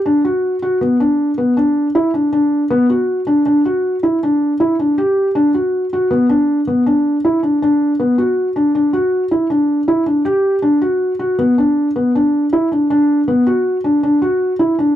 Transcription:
felt piano
0.06 D4
0.25 F#4
0.62 F#4
0.81 B3
1.00 D4
1.38 B3
1.57 D4
1.95 E4
2.14 D4
2.33 D4
2.70 B3
2.90 F#4
3.27 D4
3.46 D4
3.65 F#4
4.03 E4
4.23 D4
4.60 E4
4.79 D4
4.98 G4
5.35 D4
5.54 F#4
5.93 F#4
6.11 B3
6.29 D4
6.67 B3
6.86 D4
7.25 E4
7.43 D4
7.62 D4
8.00 B3
8.18 F#4
8.56 D4
8.75 D4
8.93 F#4
9.31 E4
9.50 D4
9.88 E4
10.06 D4
10.25 G4
10.62 D4
10.81 F#4
11.19 F#4
11.39 B3
11.58 D4
11.96 B3
12.15 D4
12.53 E4
12.72 D4
12.90 D4
13.28 B3
13.47 F#4
13.84 D4
14.03 D4
14.22 F#4
14.59 E4
14.79 D4

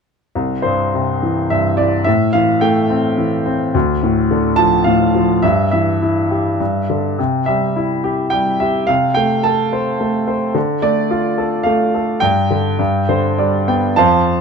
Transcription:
grand piano
0.35 C2
0.62 G2 C5
0.94 C3
1.23 E3
1.50 G2 E5
1.77 E3 D5
2.04 A2 E5
2.33 E3 F5
2.61 A3 G5
2.90 C4
3.17 E3
3.46 C4
3.74 D2
4.03 A2
4.31 D3
4.56 F3 A5
4.84 A2 F5
5.15 F3
5.42 G2 E5
5.71 E3 E5
6.02 E4
6.31 G4
6.60 G2
6.90 D3
7.18 C3
7.46 G3 E5
7.76 E4
8.04 G4
8.30 G3 G5
8.60 G4 E5
8.87 C3 F5
9.14 A3 G5
9.43 A4 A5
9.73 C5
10.00 A3
10.27 C5
10.54 D3
10.82 A3 D5
11.10 F4
11.38 A4
11.63 A3 F5
11.95 A4
12.20 G2 G5
12.51 D3
12.79 G2
13.09 D3 C5
13.38 G3 D5
13.68 B3 G5
13.96 F2 C5 F5 A5

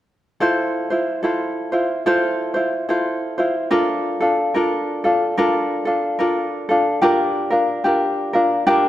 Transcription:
ukulele
0.40 E4 F4 A4 C5
0.90 E4 F4 C5
1.23 E4 F4 A4 C5
1.72 E4 F4 C5
2.06 E4 F4 A4 C5
2.54 E4 F4 C5
2.89 E4 F4 A4 C5
3.38 E4 F4 C5
3.71 D4 F4 A4 A#4
4.21 D4 F4 A4
4.54 D4 F4 A4 A#4
5.04 D4 F4 A4
5.38 D4 F4 A4 A#4
5.85 D4 F4 A4
6.19 D4 F4 A4 A#4
6.69 D4 F4 A4
7.02 D4 F4 G4 A#4
7.50 D4 F4 A#4
7.84 D4 F4 G4 A#4
8.33 D4 F4 A#4
8.67 D4 F4 G4 A#4

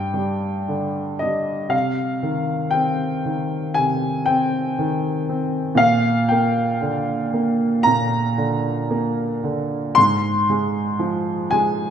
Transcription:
grand piano
Already playing: G2 G5
0.14 G3
0.68 D3
1.19 G3 D#5
1.69 C3 F5
2.23 D#3
2.71 C4 G5
3.25 D#3
3.74 C3 G#5
4.26 C4 G5
4.79 D#3
5.29 C4
5.75 A#2 F5
6.29 A#3 G5
6.81 D3
7.34 A#3
7.83 A#2 A#5
8.38 D3
8.90 A#3
9.44 D3
9.95 G#2 C6
10.50 G#3
10.99 F3
11.51 G#3 G#5

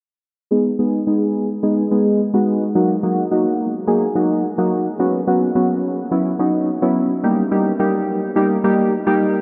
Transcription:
synth keys
0.51 G#3 B3 D#4 G#4
0.79 G#3 B3 D#4 G#4
1.07 G#3 B3 D#4 G#4
1.63 G#3 B3 D#4 G#4
1.91 G#3 B3 D#4 G#4
2.34 G#3 B3 D#4 F#4
2.75 F#3 A#3 D#4 F#4
3.03 F#3 A#3 D#4 F#4
3.31 F#3 A#3 D#4 F#4
3.87 F#3 A#3 D#4 G#4
4.15 F#3 A#3 D#4 F#4
4.58 F#3 A#3 D#4 F#4
4.99 F#3 B3 C#4 F#4
5.27 F#3 B3 C#4 F#4
5.55 F#3 B3 C#4 F#4
6.11 F#3 B3 C#4 E4
6.39 F#3 B3 C#4 D#4
6.82 F#3 B3 C#4 E4
7.23 G3 A#3 D#4 G4
7.51 G3 A#3 D#4 G4
7.79 G3 A#3 D#4 G4
8.36 G3 A#3 D#4 G4
8.64 G3 A#3 D#4 G4
9.07 G3 A#3 D#4 G4

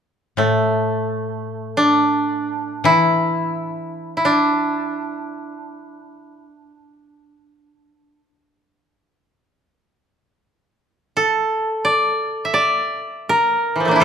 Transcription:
koto
0.37 A2 A3
1.77 D4
2.84 E3 E4
4.17 E4
4.25 D4
11.17 A4
11.85 D5
12.45 E5
12.54 D5
13.29 A#4
13.76 E3
13.80 F3
13.85 A3 A#3
13.91 D4
13.96 E4
14.00 A2 F4

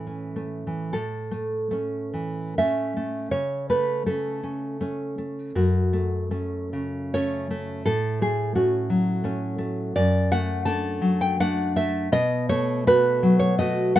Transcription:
nylon-string guitar
Already playing: A2 E3 A3
0.07 C#4
0.36 A3
0.67 E3
0.93 A2 A4
1.31 A3
1.71 A3 C#4
2.14 E3
2.58 A3 C#4 E5
2.97 A3
3.31 C#3 C#5
3.70 A3 B4
4.06 A3 C#4 A4
4.43 C#4
4.81 A3 C#4
5.18 A3
5.55 F#2 F#4
5.93 A3
6.31 A3 C#4
6.73 C#3
7.14 A3 C#4 C#5
7.51 A3
7.86 A2 A4
8.21 A3 G#4
8.55 A3 C#4 F#4
8.90 F#3
9.24 A3 C#4
9.58 A3
9.96 F#2 D5
10.31 A3 F#5
10.65 A3 D4 A5
11.02 F#3
11.21 G5
11.40 A3 D4 F#5
11.76 A3 E5
12.12 B2 D#5
12.49 A3 C#5
12.87 A3 F#4 B4
13.23 F#3
13.40 C#5
13.59 A3 F#4 D#5
13.96 A3 F#5

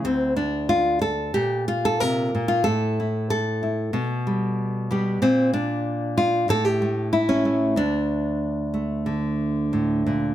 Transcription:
nylon-string guitar
Already playing: E4
0.05 D2 C4
0.36 D4
0.69 F4
1.02 A4
1.34 A#2 G4
1.68 F4
1.85 A4
2.00 C3 A#4
2.35 A#2
2.48 F4
2.64 A2 A4
3.00 E4
3.30 A4
3.63 E4
3.93 B2 B3
4.27 G3
4.91 G3 B3 G4
5.22 A#2 C4
5.54 D4
6.18 F4
6.49 A2 A4
6.65 G4
6.82 A3
7.13 E4
7.29 C#4
7.45 A3
7.76 D2 D4
8.74 A3
9.06 D3
9.73 A2
10.06 A#2

